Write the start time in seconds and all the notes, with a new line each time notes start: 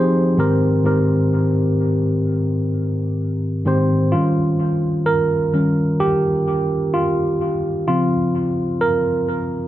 Already playing: F3 C4 D#4 G4 G#4 C5
0.38 G#2 D#3 C4 G4 A#4
0.84 G#2 D#3 C4 G4 A#4
3.65 G#2 D#3 C4 G4 C5
4.12 D#3 G3 C#4 F4
5.06 A#4
5.54 D#3 G3 C#4
6.00 G4
6.94 F4
7.88 C#3 F3 C4 F4
8.81 A#4